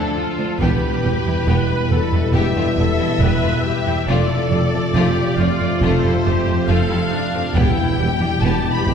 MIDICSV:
0, 0, Header, 1, 10, 480
1, 0, Start_track
1, 0, Tempo, 868558
1, 337, Time_signature, 4, 2, 24, 8
1, 4941, End_track
2, 0, Start_track
2, 0, Title_t, "Violin section"
2, 0, Program_c, 0, 48
2, 0, Note_on_c, 0, 69, 66
2, 337, Note_on_c, 0, 71, 67
2, 342, Note_off_c, 0, 69, 0
2, 1278, Note_off_c, 0, 71, 0
2, 1302, Note_on_c, 0, 76, 72
2, 2260, Note_off_c, 0, 76, 0
2, 2261, Note_on_c, 0, 74, 70
2, 3200, Note_off_c, 0, 74, 0
2, 3220, Note_on_c, 0, 72, 68
2, 3691, Note_on_c, 0, 77, 68
2, 3699, Note_off_c, 0, 72, 0
2, 4165, Note_off_c, 0, 77, 0
2, 4175, Note_on_c, 0, 79, 89
2, 4647, Note_off_c, 0, 79, 0
2, 4659, Note_on_c, 0, 81, 77
2, 4818, Note_on_c, 0, 83, 69
2, 4819, Note_off_c, 0, 81, 0
2, 4941, Note_off_c, 0, 83, 0
2, 4941, End_track
3, 0, Start_track
3, 0, Title_t, "Viola section"
3, 0, Program_c, 1, 48
3, 0, Note_on_c, 1, 62, 40
3, 97, Note_on_c, 1, 65, 42
3, 98, Note_off_c, 1, 62, 0
3, 337, Note_off_c, 1, 65, 0
3, 343, Note_on_c, 1, 67, 50
3, 810, Note_off_c, 1, 67, 0
3, 820, Note_on_c, 1, 71, 56
3, 1054, Note_on_c, 1, 69, 47
3, 1059, Note_off_c, 1, 71, 0
3, 1296, Note_off_c, 1, 69, 0
3, 1300, Note_on_c, 1, 67, 41
3, 1538, Note_off_c, 1, 67, 0
3, 1542, Note_on_c, 1, 69, 54
3, 1775, Note_off_c, 1, 69, 0
3, 1779, Note_on_c, 1, 71, 57
3, 2018, Note_off_c, 1, 71, 0
3, 2019, Note_on_c, 1, 67, 45
3, 2254, Note_off_c, 1, 67, 0
3, 2258, Note_on_c, 1, 69, 54
3, 2728, Note_off_c, 1, 69, 0
3, 2742, Note_on_c, 1, 67, 55
3, 2980, Note_off_c, 1, 67, 0
3, 2982, Note_on_c, 1, 65, 48
3, 3220, Note_off_c, 1, 65, 0
3, 3223, Note_on_c, 1, 69, 52
3, 3461, Note_off_c, 1, 69, 0
3, 3463, Note_on_c, 1, 67, 55
3, 3699, Note_on_c, 1, 69, 60
3, 3700, Note_off_c, 1, 67, 0
3, 3939, Note_off_c, 1, 69, 0
3, 3941, Note_on_c, 1, 62, 50
3, 4180, Note_off_c, 1, 62, 0
3, 4182, Note_on_c, 1, 64, 45
3, 4415, Note_on_c, 1, 67, 56
3, 4420, Note_off_c, 1, 64, 0
3, 4941, Note_off_c, 1, 67, 0
3, 4941, End_track
4, 0, Start_track
4, 0, Title_t, "French horn section"
4, 0, Program_c, 2, 60
4, 0, Note_on_c, 2, 57, 46
4, 0, Note_on_c, 2, 62, 46
4, 248, Note_off_c, 2, 57, 0
4, 248, Note_off_c, 2, 62, 0
4, 342, Note_on_c, 2, 59, 53
4, 343, Note_on_c, 2, 64, 50
4, 2238, Note_off_c, 2, 59, 0
4, 2238, Note_off_c, 2, 64, 0
4, 2254, Note_on_c, 2, 57, 59
4, 2255, Note_on_c, 2, 65, 60
4, 4084, Note_off_c, 2, 57, 0
4, 4084, Note_off_c, 2, 65, 0
4, 4178, Note_on_c, 2, 64, 58
4, 4181, Note_on_c, 2, 59, 66
4, 4941, Note_off_c, 2, 59, 0
4, 4941, Note_off_c, 2, 64, 0
4, 4941, End_track
5, 0, Start_track
5, 0, Title_t, "Violin section"
5, 0, Program_c, 3, 48
5, 213, Note_on_c, 3, 60, 39
5, 215, Note_on_c, 3, 62, 41
5, 257, Note_off_c, 3, 60, 0
5, 259, Note_off_c, 3, 62, 0
5, 337, Note_on_c, 3, 59, 57
5, 338, Note_on_c, 3, 67, 50
5, 449, Note_off_c, 3, 59, 0
5, 449, Note_off_c, 3, 67, 0
5, 575, Note_on_c, 3, 59, 41
5, 578, Note_on_c, 3, 67, 39
5, 619, Note_off_c, 3, 59, 0
5, 622, Note_off_c, 3, 67, 0
5, 701, Note_on_c, 3, 64, 33
5, 702, Note_on_c, 3, 55, 29
5, 745, Note_off_c, 3, 64, 0
5, 746, Note_off_c, 3, 55, 0
5, 816, Note_on_c, 3, 67, 49
5, 817, Note_on_c, 3, 59, 57
5, 928, Note_off_c, 3, 67, 0
5, 929, Note_off_c, 3, 59, 0
5, 1061, Note_on_c, 3, 67, 37
5, 1063, Note_on_c, 3, 59, 33
5, 1105, Note_off_c, 3, 67, 0
5, 1107, Note_off_c, 3, 59, 0
5, 1175, Note_on_c, 3, 64, 29
5, 1180, Note_on_c, 3, 55, 32
5, 1219, Note_off_c, 3, 64, 0
5, 1224, Note_off_c, 3, 55, 0
5, 1285, Note_on_c, 3, 59, 56
5, 1290, Note_on_c, 3, 67, 58
5, 1402, Note_off_c, 3, 59, 0
5, 1405, Note_off_c, 3, 67, 0
5, 1416, Note_on_c, 3, 57, 34
5, 1417, Note_on_c, 3, 65, 40
5, 1460, Note_off_c, 3, 57, 0
5, 1461, Note_off_c, 3, 65, 0
5, 1540, Note_on_c, 3, 59, 43
5, 1543, Note_on_c, 3, 67, 41
5, 1585, Note_off_c, 3, 59, 0
5, 1588, Note_off_c, 3, 67, 0
5, 1656, Note_on_c, 3, 55, 42
5, 1658, Note_on_c, 3, 64, 47
5, 1700, Note_off_c, 3, 55, 0
5, 1703, Note_off_c, 3, 64, 0
5, 1775, Note_on_c, 3, 67, 48
5, 1778, Note_on_c, 3, 59, 48
5, 1888, Note_off_c, 3, 67, 0
5, 1889, Note_off_c, 3, 59, 0
5, 1897, Note_on_c, 3, 57, 43
5, 1899, Note_on_c, 3, 65, 44
5, 1941, Note_off_c, 3, 57, 0
5, 1943, Note_off_c, 3, 65, 0
5, 2134, Note_on_c, 3, 55, 46
5, 2134, Note_on_c, 3, 64, 49
5, 2178, Note_off_c, 3, 55, 0
5, 2179, Note_off_c, 3, 64, 0
5, 2256, Note_on_c, 3, 65, 60
5, 2257, Note_on_c, 3, 57, 55
5, 2368, Note_off_c, 3, 65, 0
5, 2369, Note_off_c, 3, 57, 0
5, 2498, Note_on_c, 3, 57, 45
5, 2499, Note_on_c, 3, 65, 41
5, 2542, Note_off_c, 3, 57, 0
5, 2543, Note_off_c, 3, 65, 0
5, 2620, Note_on_c, 3, 57, 34
5, 2620, Note_on_c, 3, 60, 39
5, 2664, Note_off_c, 3, 57, 0
5, 2664, Note_off_c, 3, 60, 0
5, 2738, Note_on_c, 3, 65, 63
5, 2744, Note_on_c, 3, 57, 60
5, 2850, Note_off_c, 3, 65, 0
5, 2853, Note_off_c, 3, 57, 0
5, 2980, Note_on_c, 3, 57, 39
5, 2982, Note_on_c, 3, 65, 43
5, 3024, Note_off_c, 3, 57, 0
5, 3026, Note_off_c, 3, 65, 0
5, 3097, Note_on_c, 3, 57, 40
5, 3099, Note_on_c, 3, 60, 40
5, 3141, Note_off_c, 3, 57, 0
5, 3143, Note_off_c, 3, 60, 0
5, 3221, Note_on_c, 3, 57, 65
5, 3223, Note_on_c, 3, 65, 60
5, 3331, Note_off_c, 3, 57, 0
5, 3332, Note_off_c, 3, 65, 0
5, 3338, Note_on_c, 3, 64, 42
5, 3342, Note_on_c, 3, 55, 38
5, 3383, Note_off_c, 3, 64, 0
5, 3386, Note_off_c, 3, 55, 0
5, 3458, Note_on_c, 3, 57, 47
5, 3459, Note_on_c, 3, 65, 46
5, 3503, Note_off_c, 3, 57, 0
5, 3503, Note_off_c, 3, 65, 0
5, 3579, Note_on_c, 3, 57, 45
5, 3581, Note_on_c, 3, 60, 50
5, 3623, Note_off_c, 3, 57, 0
5, 3626, Note_off_c, 3, 60, 0
5, 3693, Note_on_c, 3, 65, 57
5, 3695, Note_on_c, 3, 57, 58
5, 3807, Note_off_c, 3, 65, 0
5, 3808, Note_off_c, 3, 57, 0
5, 3809, Note_on_c, 3, 55, 41
5, 3809, Note_on_c, 3, 64, 48
5, 3853, Note_off_c, 3, 55, 0
5, 3853, Note_off_c, 3, 64, 0
5, 4058, Note_on_c, 3, 60, 55
5, 4061, Note_on_c, 3, 57, 51
5, 4102, Note_off_c, 3, 60, 0
5, 4105, Note_off_c, 3, 57, 0
5, 4173, Note_on_c, 3, 59, 73
5, 4176, Note_on_c, 3, 67, 60
5, 4287, Note_off_c, 3, 59, 0
5, 4289, Note_off_c, 3, 67, 0
5, 4415, Note_on_c, 3, 67, 39
5, 4419, Note_on_c, 3, 59, 38
5, 4459, Note_off_c, 3, 67, 0
5, 4463, Note_off_c, 3, 59, 0
5, 4536, Note_on_c, 3, 55, 41
5, 4536, Note_on_c, 3, 64, 41
5, 4580, Note_off_c, 3, 55, 0
5, 4580, Note_off_c, 3, 64, 0
5, 4659, Note_on_c, 3, 67, 61
5, 4662, Note_on_c, 3, 59, 74
5, 4770, Note_off_c, 3, 67, 0
5, 4772, Note_off_c, 3, 59, 0
5, 4900, Note_on_c, 3, 59, 44
5, 4900, Note_on_c, 3, 67, 47
5, 4941, Note_off_c, 3, 59, 0
5, 4941, Note_off_c, 3, 67, 0
5, 4941, End_track
6, 0, Start_track
6, 0, Title_t, "Trombone section"
6, 0, Program_c, 4, 61
6, 0, Note_on_c, 4, 50, 45
6, 0, Note_on_c, 4, 53, 45
6, 315, Note_off_c, 4, 50, 0
6, 315, Note_off_c, 4, 53, 0
6, 345, Note_on_c, 4, 55, 52
6, 346, Note_on_c, 4, 47, 49
6, 2168, Note_off_c, 4, 47, 0
6, 2168, Note_off_c, 4, 55, 0
6, 2262, Note_on_c, 4, 53, 52
6, 2267, Note_on_c, 4, 48, 55
6, 4158, Note_off_c, 4, 53, 0
6, 4161, Note_off_c, 4, 48, 0
6, 4173, Note_on_c, 4, 55, 55
6, 4174, Note_on_c, 4, 47, 58
6, 4941, Note_off_c, 4, 47, 0
6, 4941, Note_off_c, 4, 55, 0
6, 4941, End_track
7, 0, Start_track
7, 0, Title_t, "Cello section"
7, 0, Program_c, 5, 48
7, 216, Note_on_c, 5, 38, 35
7, 260, Note_off_c, 5, 38, 0
7, 331, Note_on_c, 5, 40, 57
7, 376, Note_off_c, 5, 40, 0
7, 572, Note_on_c, 5, 40, 35
7, 616, Note_off_c, 5, 40, 0
7, 695, Note_on_c, 5, 40, 40
7, 740, Note_off_c, 5, 40, 0
7, 815, Note_on_c, 5, 40, 54
7, 859, Note_off_c, 5, 40, 0
7, 1057, Note_on_c, 5, 40, 38
7, 1101, Note_off_c, 5, 40, 0
7, 1173, Note_on_c, 5, 40, 40
7, 1218, Note_off_c, 5, 40, 0
7, 1291, Note_on_c, 5, 40, 59
7, 1336, Note_off_c, 5, 40, 0
7, 1413, Note_on_c, 5, 40, 38
7, 1457, Note_off_c, 5, 40, 0
7, 1535, Note_on_c, 5, 40, 38
7, 1579, Note_off_c, 5, 40, 0
7, 1656, Note_on_c, 5, 40, 39
7, 1700, Note_off_c, 5, 40, 0
7, 1775, Note_on_c, 5, 40, 62
7, 1819, Note_off_c, 5, 40, 0
7, 1895, Note_on_c, 5, 40, 38
7, 1939, Note_off_c, 5, 40, 0
7, 2136, Note_on_c, 5, 40, 41
7, 2180, Note_off_c, 5, 40, 0
7, 2261, Note_on_c, 5, 41, 66
7, 2306, Note_off_c, 5, 41, 0
7, 2497, Note_on_c, 5, 41, 37
7, 2541, Note_off_c, 5, 41, 0
7, 2618, Note_on_c, 5, 41, 41
7, 2663, Note_off_c, 5, 41, 0
7, 2733, Note_on_c, 5, 41, 60
7, 2778, Note_off_c, 5, 41, 0
7, 2975, Note_on_c, 5, 41, 45
7, 3019, Note_off_c, 5, 41, 0
7, 3093, Note_on_c, 5, 41, 36
7, 3137, Note_off_c, 5, 41, 0
7, 3215, Note_on_c, 5, 41, 60
7, 3260, Note_off_c, 5, 41, 0
7, 3333, Note_on_c, 5, 41, 47
7, 3377, Note_off_c, 5, 41, 0
7, 3449, Note_on_c, 5, 41, 39
7, 3493, Note_off_c, 5, 41, 0
7, 3572, Note_on_c, 5, 41, 44
7, 3616, Note_off_c, 5, 41, 0
7, 3697, Note_on_c, 5, 41, 63
7, 3741, Note_off_c, 5, 41, 0
7, 3815, Note_on_c, 5, 41, 39
7, 3859, Note_off_c, 5, 41, 0
7, 4056, Note_on_c, 5, 41, 44
7, 4100, Note_off_c, 5, 41, 0
7, 4168, Note_on_c, 5, 40, 71
7, 4213, Note_off_c, 5, 40, 0
7, 4414, Note_on_c, 5, 40, 40
7, 4459, Note_off_c, 5, 40, 0
7, 4529, Note_on_c, 5, 40, 50
7, 4573, Note_off_c, 5, 40, 0
7, 4647, Note_on_c, 5, 40, 57
7, 4692, Note_off_c, 5, 40, 0
7, 4895, Note_on_c, 5, 40, 43
7, 4939, Note_off_c, 5, 40, 0
7, 4941, End_track
8, 0, Start_track
8, 0, Title_t, "Double bass section"
8, 0, Program_c, 6, 48
8, 333, Note_on_c, 6, 28, 44
8, 378, Note_off_c, 6, 28, 0
8, 575, Note_on_c, 6, 28, 43
8, 619, Note_off_c, 6, 28, 0
8, 814, Note_on_c, 6, 28, 56
8, 858, Note_off_c, 6, 28, 0
8, 1056, Note_on_c, 6, 28, 40
8, 1100, Note_off_c, 6, 28, 0
8, 1288, Note_on_c, 6, 28, 55
8, 1332, Note_off_c, 6, 28, 0
8, 1532, Note_on_c, 6, 28, 38
8, 1576, Note_off_c, 6, 28, 0
8, 1772, Note_on_c, 6, 28, 62
8, 1816, Note_off_c, 6, 28, 0
8, 2260, Note_on_c, 6, 29, 57
8, 2305, Note_off_c, 6, 29, 0
8, 2498, Note_on_c, 6, 29, 47
8, 2542, Note_off_c, 6, 29, 0
8, 2737, Note_on_c, 6, 29, 62
8, 2781, Note_off_c, 6, 29, 0
8, 2978, Note_on_c, 6, 29, 44
8, 3023, Note_off_c, 6, 29, 0
8, 3219, Note_on_c, 6, 29, 71
8, 3264, Note_off_c, 6, 29, 0
8, 3465, Note_on_c, 6, 29, 41
8, 3509, Note_off_c, 6, 29, 0
8, 3699, Note_on_c, 6, 29, 59
8, 3743, Note_off_c, 6, 29, 0
8, 4182, Note_on_c, 6, 28, 57
8, 4227, Note_off_c, 6, 28, 0
8, 4418, Note_on_c, 6, 28, 45
8, 4462, Note_off_c, 6, 28, 0
8, 4658, Note_on_c, 6, 28, 65
8, 4702, Note_off_c, 6, 28, 0
8, 4893, Note_on_c, 6, 28, 47
8, 4937, Note_off_c, 6, 28, 0
8, 4941, End_track
9, 0, Start_track
9, 0, Title_t, "Tuba"
9, 0, Program_c, 7, 58
9, 338, Note_on_c, 7, 28, 51
9, 386, Note_off_c, 7, 28, 0
9, 575, Note_on_c, 7, 28, 39
9, 623, Note_off_c, 7, 28, 0
9, 814, Note_on_c, 7, 28, 53
9, 863, Note_off_c, 7, 28, 0
9, 1055, Note_on_c, 7, 28, 41
9, 1103, Note_off_c, 7, 28, 0
9, 1295, Note_on_c, 7, 28, 51
9, 1343, Note_off_c, 7, 28, 0
9, 1540, Note_on_c, 7, 28, 34
9, 1588, Note_off_c, 7, 28, 0
9, 1775, Note_on_c, 7, 28, 50
9, 1823, Note_off_c, 7, 28, 0
9, 2256, Note_on_c, 7, 29, 58
9, 2304, Note_off_c, 7, 29, 0
9, 2500, Note_on_c, 7, 29, 41
9, 2547, Note_off_c, 7, 29, 0
9, 2736, Note_on_c, 7, 29, 53
9, 2784, Note_off_c, 7, 29, 0
9, 2982, Note_on_c, 7, 29, 49
9, 3029, Note_off_c, 7, 29, 0
9, 3222, Note_on_c, 7, 29, 65
9, 3269, Note_off_c, 7, 29, 0
9, 3459, Note_on_c, 7, 29, 42
9, 3507, Note_off_c, 7, 29, 0
9, 3699, Note_on_c, 7, 29, 59
9, 3747, Note_off_c, 7, 29, 0
9, 4178, Note_on_c, 7, 28, 63
9, 4226, Note_off_c, 7, 28, 0
9, 4419, Note_on_c, 7, 28, 46
9, 4467, Note_off_c, 7, 28, 0
9, 4656, Note_on_c, 7, 28, 67
9, 4704, Note_off_c, 7, 28, 0
9, 4898, Note_on_c, 7, 28, 49
9, 4941, Note_off_c, 7, 28, 0
9, 4941, End_track
10, 0, Start_track
10, 0, Title_t, "Taiko and cinematic ensemble drums"
10, 337, Note_on_c, 9, 41, 52
10, 392, Note_off_c, 9, 41, 0
10, 4178, Note_on_c, 9, 41, 62
10, 4233, Note_off_c, 9, 41, 0
10, 4899, Note_on_c, 9, 41, 34
10, 4941, Note_off_c, 9, 41, 0
10, 4941, End_track
0, 0, End_of_file